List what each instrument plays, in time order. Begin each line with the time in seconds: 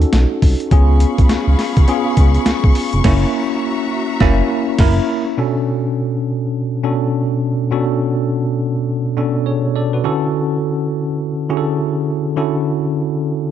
Already playing: tine electric piano C#4 D#4 F#4 A4
0.02 closed hi-hat
0.13 analog synth bass B1, snare, closed hi-hat
0.42 analog synth bass C2, kick, open hi-hat
0.60 closed hi-hat
0.71 analog synth bass C#2, tine electric piano B3 C#4 F4 G#4, string section G#4 F5 B5 C#6, kick, closed hi-hat
1.00 closed hi-hat
1.18 analog synth bass B1, kick, closed hi-hat
1.29 analog synth bass C#2, snare, closed hi-hat
1.47 analog synth bass C#2
1.59 snare, open hi-hat
1.77 analog synth bass C#2, kick, closed hi-hat
1.88 tine electric piano B3 C#4 F4 G#4, closed hi-hat
2.17 analog synth bass C#2, kick, closed hi-hat
2.34 closed hi-hat
2.46 analog synth bass C#2, snare, closed hi-hat
2.64 analog synth bass C#2, kick
2.75 open hi-hat
2.93 analog synth bass F1, closed hi-hat
3.04 analog synth bass F#1, tine electric piano A#3 C#4 E4, string section F#4 E5 A#5, kick, snare, crash
4.20 analog synth bass F#1, tine electric piano A#3 C#4 E4, kick, snare
4.79 analog synth bass F#1, tine electric piano E4 A#4, kick, snare, crash
5.37 tine electric piano B2 C#4 D4 F#4 A4
6.83 tine electric piano B2 C#4 D4 F#4 A4
7.71 tine electric piano B2 C#4 D4 F#4 A4
9.16 tine electric piano B2 C#4 D4 F#4 A4
9.46 tine electric piano G#4 C#5
9.76 tine electric piano A4 D5
9.93 tine electric piano F#4 B4
10.04 tine electric piano D3 C#4 E4 F#4 A4
11.49 tine electric piano D3 C#4 E4 F#4 G#4
11.57 tine electric piano A4
12.37 tine electric piano D3 C#4 E4 F#4 A4